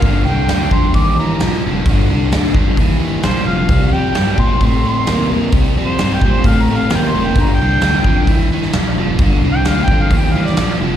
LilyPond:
<<
  \new Staff \with { instrumentName = "Harmonica" } { \time 4/4 \key g \minor \tempo 4 = 131 f''8 g''4 c'''8 d'''8 bes''4 r8 | r2. c''8 f''8~ | f''8 g''4 c'''8 c'''8 c'''4 r8 | \tuplet 3/2 { r4 c''8~ c''8 g''8 c''8 f''8 bes''8 f''8 g''8 c'''8 g''8 } |
\tuplet 3/2 { bes''8 g''4~ } g''4. r4. | \tuplet 3/2 { r4 g''8 f''8 g''8 f''8 g''8 f''8 d''8 } r4 | }
  \new Staff \with { instrumentName = "Overdriven electric guitar" } { \clef bass \time 4/4 \key g \minor <g, d>8 <g, d>8 <g, d>8 <g, d>8 <g, e>8 <g, e>8 <g, f>8 <g, f>8 | <g, d>8 <g, d>8 <g, d>8 <g, d>8 <g, e>8 <g, e>8 <g, f>8 <g, f>8 | <c g>8 <c g>8 <c g>8 <c g>8 <c a>8 <c a>8 <c bes>8 <c bes>8 | <c g>8 <c g>8 <c g>8 <c g>8 <c a>8 <c a>8 <c bes>8 <c bes>8 |
<g, d>8 <g, d>8 <g, d>8 <g, d>8 <g, e>8 <g, e>8 <g, f>8 <g, f>8 | <g, d>8 <g, d>8 <g, d>8 <g, d>8 <g, e>8 <g, e>8 <g, f>8 <g, f>8 | }
  \new Staff \with { instrumentName = "Fingered electric bass" } { \clef bass \time 4/4 \key g \minor g,,8 c,8 d,8 f,8 ees,4 bes,,8 f,,8 | g,,8 c,8 d,8 f,8 ees,4 bes,,8 f,,8 | c,8 f,8 g,8 bes,8 a,4 ees,8 bes,,8 | c,8 f,8 g,8 bes,8 a,4 ees,8 f,,8 |
g,,8 c,8 d,8 f,8 ees,4 bes,,8 f,,8 | g,,8 c,8 d,8 f,8 ees,4 bes,,8 f,,8 | }
  \new DrumStaff \with { instrumentName = "Drums" } \drummode { \time 4/4 <hho bd>4 <hho sn>8 bd8 <hho bd>4 <hho sn>16 sn8. | <hho bd>4 <hho sn>8 bd8 <hho bd>4 <hho sn>16 sn8. | <hho bd>4 <hho sn>8 bd8 <hho bd>4 <hho sn>4 | <hho bd>4 <hho sn>8 bd8 <hho bd>4 <hho sn>4 |
<hho bd>4 <hho sn>8 bd8 <hho bd>8. sn16 <hho sn>4 | <hho bd>4 <hho sn>8 bd8 <hho bd>8. sn16 <hho sn>4 | }
>>